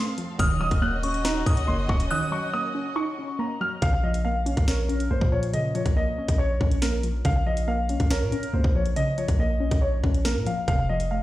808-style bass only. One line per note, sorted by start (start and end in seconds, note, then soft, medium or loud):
0.39 0.70 D#1 loud
0.71 1.43 D#1 loud
1.46 1.67 D#2 loud
1.68 1.88 F#1 loud
1.89 2.10 D#1 loud
3.82 4.54 A#1 loud
4.57 5.09 A#1 loud
5.11 5.21 A#1 loud
5.21 5.83 A#2 loud
5.86 6.06 A#1 loud
6.29 6.59 A#1 loud
6.61 7.22 A#1 loud
7.25 7.97 A#1 loud
8.00 8.23 A#1 loud
8.21 8.32 A#2 medium
8.54 8.64 C#2 loud
8.64 9.05 A#1 loud
9.28 9.70 A#1 loud
9.71 10.02 A#1 loud
10.04 10.37 A#1 loud
10.36 10.46 A#2 medium
10.68 11.23 F1 loud